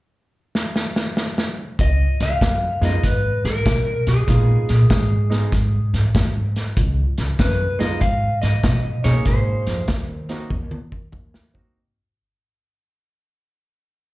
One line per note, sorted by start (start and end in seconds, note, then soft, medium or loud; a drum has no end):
0.55 snare medium
0.76 snare medium
0.96 snare medium
1.17 snare medium
1.38 snare medium
1.79 2.05 C#2 medium
1.79 2.22 D#5 medium
1.79 kick medium
1.79 closed hi-hat medium
2.20 2.34 C#2 medium
2.20 2.85 F5 medium
2.20 snare soft
2.20 closed hi-hat medium
2.41 2.67 F#2 medium
2.41 kick medium
2.41 snare medium
2.41 closed hi-hat medium
2.81 2.95 F#2 medium
2.81 3.01 G#3 medium
2.81 3.01 B3 medium
2.81 3.01 D#4 medium
2.81 3.02 F4 medium
2.81 3.06 D#5 medium
2.81 snare soft
2.81 closed hi-hat medium
3.04 3.29 G#2 medium
3.04 3.45 B4 medium
3.04 kick medium
3.04 snare soft
3.04 closed hi-hat medium
3.44 3.58 G#2 medium
3.44 4.09 A#4 medium
3.44 snare soft
3.44 closed hi-hat medium
3.66 3.92 B2 medium
3.66 kick medium
3.66 snare loud
3.66 closed hi-hat medium
4.07 4.20 B2 medium
4.07 5.90 G#4 medium
4.07 snare soft
4.07 closed hi-hat medium
4.27 4.54 A#2 medium
4.27 4.64 G#3 medium
4.27 4.64 B3 medium
4.27 4.65 D#4 medium
4.27 4.65 F4 medium
4.27 kick medium
4.27 snare soft
4.27 closed hi-hat medium
4.69 4.83 A#2 medium
4.69 snare soft
4.69 closed hi-hat medium
4.90 5.29 G#2 medium
4.90 kick medium
4.90 snare loud
4.90 closed hi-hat medium
5.30 5.50 G#3 medium
5.30 5.50 B3 medium
5.30 5.50 D#4 medium
5.30 5.50 G#4 medium
5.30 snare soft
5.30 closed hi-hat medium
5.52 5.78 G#2 medium
5.52 kick medium
5.52 snare soft
5.52 closed hi-hat medium
5.94 6.07 G#2 medium
5.94 snare soft
5.94 closed hi-hat medium
6.15 6.54 G#2 medium
6.15 kick medium
6.15 snare loud
6.15 closed hi-hat medium
6.56 snare soft
6.56 closed hi-hat medium
6.77 7.03 C#2 medium
6.77 kick medium
6.77 closed hi-hat medium
7.18 7.32 C#2 medium
7.18 snare soft
7.18 closed hi-hat medium
7.39 7.65 F#2 medium
7.39 7.78 B4 medium
7.39 kick medium
7.39 snare medium
7.39 closed hi-hat medium
7.79 7.94 F#2 medium
7.79 7.99 G#3 medium
7.79 7.99 B3 medium
7.79 7.99 D#4 medium
7.79 8.00 F4 medium
7.79 8.00 D#5 medium
7.79 snare soft
7.79 closed hi-hat medium
8.01 8.27 G#2 medium
8.01 8.39 F5 medium
8.01 kick medium
8.01 closed hi-hat medium
8.42 8.56 G#2 medium
8.42 9.00 D#5 medium
8.42 snare soft
8.42 closed hi-hat medium
8.64 8.90 B2 medium
8.64 kick medium
8.64 snare loud
8.64 closed hi-hat medium
9.04 9.18 B2 medium
9.04 9.84 A#3 medium
9.04 9.84 C#4 medium
9.04 9.84 D#4 medium
9.04 9.84 G#4 medium
9.04 9.27 C#5 medium
9.04 snare soft
9.04 closed hi-hat medium
9.25 9.52 G#1 medium
9.25 9.85 C5 medium
9.25 kick medium
9.25 snare soft
9.25 closed hi-hat medium
9.67 9.81 F2 medium
9.67 snare soft
9.67 closed hi-hat medium
9.88 10.28 D#2 medium
9.88 kick medium
9.88 snare loud
9.88 closed hi-hat medium
10.29 10.48 A#3 medium
10.29 10.49 C4 medium
10.29 10.49 D#4 medium
10.29 10.49 F#4 medium
10.29 snare soft
10.29 closed hi-hat medium
10.50 10.76 D#2 medium
10.50 kick medium
10.50 high tom soft
10.71 high tom medium
10.92 11.05 D#2 medium
10.92 kick medium
11.12 11.52 D#2 medium
11.12 kick medium
11.12 mid tom medium
11.34 snare medium
11.53 11.75 A#3 medium
11.53 11.75 C4 medium
11.53 11.76 D#4 medium
11.53 11.76 F#4 medium
11.53 kick medium